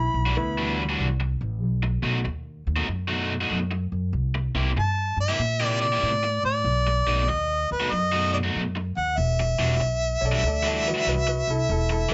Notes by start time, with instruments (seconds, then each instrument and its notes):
Already playing: upright bass B1, upright piano E4, harmonica B5
0.14 upright bass B1
0.26 overdriven electric guitar E3 G3 D4 F#4
0.36 upright bass D2, upright piano B3 E4, muted overdriven electric guitar stroke
0.58 overdriven electric guitar E3 G3 D4 F#4
0.89 overdriven electric guitar E3 G3 D4 F#4
0.99 upright bass C2
1.20 muted overdriven electric guitar stroke
1.41 upright bass A1
1.62 upright bass B1
1.83 muted overdriven electric guitar stroke
2.03 upright bass B1, overdriven electric guitar B2 A3 D#4 F#4
2.25 upright bass D#2, muted overdriven electric guitar stroke
2.67 upright bass D#2
2.76 overdriven electric guitar B2 A3 D#4 F#4
2.87 upright bass F#2, muted overdriven electric guitar stroke
3.08 overdriven electric guitar B2 A3 D#4 F#4
3.41 overdriven electric guitar B2 A3 D#4 F#4
3.50 upright bass F#2
3.71 muted overdriven electric guitar stroke
3.92 upright bass F#2
4.13 upright bass C2
4.35 muted overdriven electric guitar stroke
4.55 upright bass C2, overdriven electric guitar C3 A#3 E4 G4
4.77 upright bass G2, harmonica A5, muted overdriven electric guitar stroke
5.17 upright bass G2, harmonica E5
5.29 overdriven electric guitar C3 A#3 E4 G4
5.39 upright bass A#2, muted overdriven electric guitar stroke
5.60 overdriven electric guitar C3 A#3 E4 G4
5.66 harmonica D5
5.81 harmonica D5
5.92 overdriven electric guitar C3 A#3 E4 G4
6.03 upright bass A2
6.23 muted overdriven electric guitar stroke
6.43 upright bass A2, harmonica D5
6.64 upright bass B1
6.87 muted overdriven electric guitar stroke
7.07 upright bass B1, overdriven electric guitar B2 A3 D#4 F#4
7.28 upright bass D#2, harmonica D#5, muted overdriven electric guitar stroke
7.71 upright bass D#2, harmonica B4
7.80 overdriven electric guitar B2 A3 D#4 F#4
7.91 upright bass F#2, harmonica D#5, muted overdriven electric guitar stroke
8.12 overdriven electric guitar B2 A3 D#4 F#4
8.32 harmonica D5 D#5
8.43 overdriven electric guitar B2 A3 D#4 F#4
8.55 upright bass F#2
8.75 muted overdriven electric guitar stroke
8.97 upright bass D#2, harmonica F#5
9.18 upright bass E1, harmonica E5
9.40 muted overdriven electric guitar stroke
9.59 upright bass E1, overdriven electric guitar E3 G3 D4 F#4
9.80 upright bass B1, muted overdriven electric guitar stroke
10.21 upright bass B1, upright piano C#5
10.25 upright piano A4 D5
10.32 overdriven electric guitar E3 G3 D4 F#4
10.43 upright bass D2, upright piano A4, muted overdriven electric guitar stroke
10.47 upright piano D5
10.63 overdriven electric guitar E3 G3 D4 F#4, upright piano A4
10.67 upright piano D5
10.87 upright piano F#4 B4
10.94 overdriven electric guitar E3 G3 D4 F#4
11.06 upright bass C2, upright piano F#4 B4
11.27 upright piano F#4 B4, muted overdriven electric guitar stroke
11.47 upright bass C2, upright piano E4 A4
11.69 upright bass E1, upright piano E4 A4
11.90 upright piano E4 A4, muted overdriven electric guitar stroke
12.09 upright bass E1, overdriven electric guitar E3 G3 D4 F#4